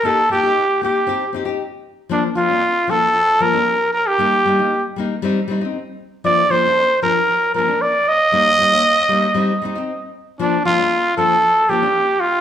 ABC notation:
X:1
M:4/4
L:1/16
Q:"Swing 16ths" 1/4=116
K:Bb
V:1 name="Trumpet"
A2 G4 G4 z6 | D2 F4 A4 B4 B G- | G4- G z8 z3 | d2 c4 B4 B2 d2 e2- |
e12- e2 z2 | D2 F4 A4 G4 F2 |]
V:2 name="Nylon-string guitar"
[B,EG] z [B,EG] [EG] z2 [B,EG] z [CEG] z [CEG] [EG] z4 | [F,B,D] z [F,B,D] [B,D] z2 [F,B,D] z3 [F,B,] [B,D] z4 | [G,B,E] z [G,B,E] [B,E] z2 [G,B,E] z [G,CE] z [G,CE] [CE] z4 | [F,B,D] z [F,B,D] [B,D] z2 [F,D] z3 [F,B,D] [B,D] z4 |
[G,B,E] z [G,B,E] [B,E] z2 [G,B,E] z [G,CE] z [G,CE] [CE] z4 | [F,B,D] z [F,B,D] [B,D] z2 [F,B,D] z3 [F,B,D] [B,D] z4 |]